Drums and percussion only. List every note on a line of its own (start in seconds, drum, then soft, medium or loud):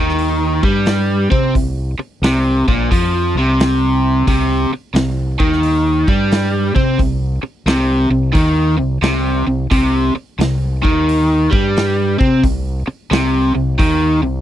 0.09 snare soft
0.18 open hi-hat medium
0.63 kick medium
0.86 snare loud
0.86 open hi-hat soft
1.32 kick loud
1.55 kick medium
1.55 open hi-hat medium
2.23 snare loud
2.23 open hi-hat medium
2.68 kick medium
2.92 kick loud
2.92 open hi-hat medium
3.60 snare loud
3.60 open hi-hat medium
4.28 kick loud
4.28 open hi-hat medium
4.95 snare loud
4.95 open hi-hat medium
5.40 kick loud
5.52 snare soft
5.63 open hi-hat medium
6.08 kick loud
6.31 snare loud
6.31 open hi-hat medium
6.76 kick loud
6.99 kick medium
6.99 open hi-hat medium
7.67 snare loud
7.67 open hi-hat medium
8.35 kick loud
8.35 open hi-hat medium
9.03 snare loud
9.03 open hi-hat medium
9.71 kick loud
9.71 open hi-hat medium
10.40 snare loud
10.40 open hi-hat medium
10.85 kick medium
11.09 open hi-hat medium
11.53 kick loud
11.77 snare loud
11.77 open hi-hat medium
12.21 kick loud
12.44 kick medium
12.44 open hi-hat medium
13.12 snare loud
13.12 open hi-hat medium
13.79 kick loud
13.79 open hi-hat medium